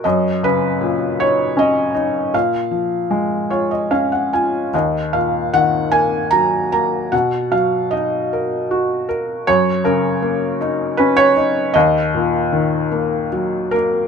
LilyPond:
<<
  \new Staff \with { instrumentName = "Felt piano" } { \time 3/4 \key ees \minor \tempo 4 = 77 ees''8 ces''4 des''8 ees''4 | f''4. des''16 ees''16 f''16 ges''16 aes''8 | ees''8 f''8 ges''8 aes''8 bes''8 bes''8 | fis''8 f''8 dis''4. r8 |
des''8 bes'4 r8 ces''16 des''8. | ees''2 r8 bes'8 | }
  \new Staff \with { instrumentName = "Felt piano" } { \time 3/4 \key ees \minor ges,8 des8 bes,8 ees'8 des'8 ees'8 | bes,8 f8 aes8 f'8 des'8 f'8 | ees,8 bes,8 ees8 bes8 ges8 bes8 | b,8 fis8 dis'8 ais'8 fis'8 ais'8 |
ges,8 des8 bes8 ees'8 des'8 ees'8 | ees,8 bes,8 ees8 bes8 ges8 bes8 | }
>>